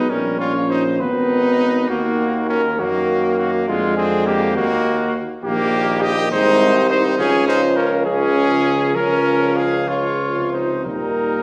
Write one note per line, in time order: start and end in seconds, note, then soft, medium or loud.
0.00 0.11 G#3 medium
0.00 0.11 D#4 medium
0.00 0.12 B4 medium
0.10 1.02 A#1 medium
0.10 0.54 G3 medium
0.10 0.39 C#4 medium
0.10 1.02 C#4 medium
0.10 0.40 A#4 loud
0.39 0.53 F4 medium
0.39 0.72 C#5 medium
0.55 0.99 F3 medium
0.70 0.84 D#4 medium
0.70 1.02 C5 medium
1.00 1.89 G#1 medium
1.00 1.88 D#3 medium
1.00 1.90 B3 medium
1.00 1.91 D#4 loud
1.00 1.89 B4 loud
1.89 2.80 D#2 medium
1.89 2.77 D#3 medium
1.89 2.48 A#3 medium
1.89 2.78 A#3 medium
1.89 2.48 F#4 loud
2.49 2.62 C#4 medium
2.49 2.81 A#4 medium
2.79 3.67 F#2 medium
2.79 3.66 D#3 medium
2.79 3.37 A#3 medium
2.79 3.70 A#3 medium
2.79 3.38 F#4 loud
3.38 3.67 A#3 medium
3.38 3.52 F#4 loud
3.68 4.58 F2 medium
3.68 4.57 D3 medium
3.68 4.58 G#3 medium
3.68 3.97 G#3 medium
3.68 3.97 F4 loud
3.97 4.28 C4 medium
3.97 4.26 G#4 loud
4.27 4.56 A#3 medium
4.27 4.56 G4 loud
4.56 5.17 D#2 medium
4.56 5.16 D#3 medium
4.56 5.17 A#3 medium
4.56 5.16 A#3 loud
4.56 5.16 F#4 loud
5.43 6.27 A#1 medium
5.43 6.27 D#3 medium
5.43 6.27 A#3 medium
5.43 6.04 A#3 loud
5.43 6.04 G4 loud
6.02 6.31 G4 loud
6.02 6.32 D#5 loud
6.30 7.17 C2 medium
6.30 7.20 D#3 medium
6.30 6.77 G#3 medium
6.30 6.89 D#4 loud
6.30 6.89 C5 loud
6.75 7.21 G3 medium
6.90 7.18 D#4 medium
6.90 7.03 C5 loud
7.18 8.93 C#2 medium
7.18 8.06 C#3 medium
7.18 8.06 F3 medium
7.18 7.47 C#4 loud
7.18 7.47 G#4 loud
7.48 7.61 D#4 loud
7.48 7.78 C5 loud
7.76 7.90 C#4 medium
7.76 8.05 A#4 loud
8.05 8.94 C#3 medium
8.05 8.94 F3 medium
8.05 8.94 C#4 loud
8.05 8.97 G#4 loud
8.95 10.82 C#2 medium
8.95 9.87 C#3 medium
8.95 9.87 F3 medium
8.95 9.59 C#4 medium
8.95 9.56 A#4 loud
9.56 9.90 G#4 medium
9.56 9.88 F5 loud
9.88 10.38 C#3 medium
9.88 10.87 F3 medium
9.88 10.52 F4 medium
9.88 10.51 C#5 loud
10.36 10.86 C3 medium
10.52 10.85 D#4 medium
10.52 10.84 C5 medium
10.84 11.43 D#2 medium
10.84 11.43 A#2 medium
10.84 11.43 G3 medium
10.84 11.43 D#4 medium
10.84 11.43 A#4 medium